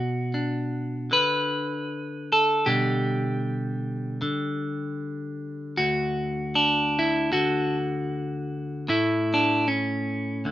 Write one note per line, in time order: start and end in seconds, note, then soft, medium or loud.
0.00 1.10 B2 medium
0.00 1.89 F#4 medium
0.34 2.67 D4 soft
1.11 2.66 D3 medium
1.11 2.32 B4 loud
2.32 2.67 A4 medium
2.66 4.22 B2 medium
2.66 4.20 D3 soft
2.66 5.79 G3 soft
2.66 5.00 G4 medium
4.22 7.33 D3 medium
5.77 8.90 D2 medium
5.77 6.98 F#4 loud
6.55 7.77 D4 medium
6.99 7.32 E4 medium
7.33 8.89 D3 medium
7.33 8.89 F#4 loud
8.88 10.45 A2 medium
8.88 10.41 A3 soft
8.88 9.67 E4 medium
9.34 9.67 D4 medium
9.68 10.52 C#4 medium
10.45 10.52 D2 medium
10.45 10.52 D3 soft